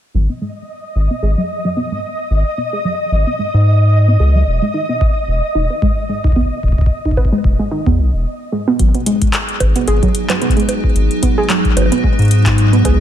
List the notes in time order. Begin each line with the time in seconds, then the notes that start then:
0.14 G#1 F#3 D#5
0.30 B3
0.42 G#3
0.96 G#1
1.11 B3
1.23 G#1 G#4
1.38 F#3
1.65 F#3
1.77 B3
1.92 G#3
2.31 G#1
2.58 B3
2.73 G#4
2.85 F#3
3.12 G#1 F#3
3.27 B3
3.39 G#3
3.54 G#2
4.08 B3
4.20 C#2 G#4
4.35 F#3
4.47 E1
4.62 G#3
4.74 D#4
4.89 B3
5.01 kick
5.28 E1
5.55 E1 D#4
5.70 B4
5.82 G#3, kick
6.09 G#3
6.24 D#4, kick
6.27 kick
6.32 B3, kick
6.36 kick
6.41 kick
6.45 kick
6.63 E1, kick
6.68 kick
6.72 kick
6.78 kick
6.81 kick
6.86 kick
7.05 D#4, kick
7.11 kick
7.17 B4, kick
7.25 kick
7.32 G#3
7.44 E1, kick
7.59 G#3
7.71 D#4
7.86 E2 B3, kick
7.98 B1
8.13 E1
8.52 G#3
8.68 B3
8.79 G#1 F#3 G#3 B3 D#4 G#4, kick, closed hi-hat
8.95 B3, closed hi-hat
9.06 G#3, closed hi-hat
9.22 kick, closed hi-hat
9.33 clap, closed hi-hat
9.49 closed hi-hat
9.60 G#1, kick, closed hi-hat, high bongo
9.76 B3, closed hi-hat
9.88 G#1 G#4, closed hi-hat
10.03 F#3, kick, closed hi-hat
10.15 closed hi-hat
10.30 F#3, clap, closed hi-hat, high bongo
10.42 B3, closed hi-hat
10.49 kick, closed hi-hat
10.57 G#3, closed hi-hat
10.60 closed hi-hat
10.69 closed hi-hat, high bongo
10.84 kick
10.96 G#1, closed hi-hat
11.11 closed hi-hat
11.23 B3, kick, closed hi-hat
11.38 G#4
11.50 F#3, clap, closed hi-hat
11.65 kick, closed hi-hat
11.77 G#1 F#3, closed hi-hat, high bongo
11.82 high bongo
11.86 high bongo
11.92 B3, closed hi-hat
12.04 G#3, kick
12.19 G#2, closed hi-hat
12.22 closed hi-hat
12.25 closed hi-hat
12.28 closed hi-hat
12.31 closed hi-hat
12.42 kick, clap, closed hi-hat
12.46 closed hi-hat
12.58 closed hi-hat
12.73 B3, closed hi-hat
12.85 C#2 G#4, kick, closed hi-hat, high bongo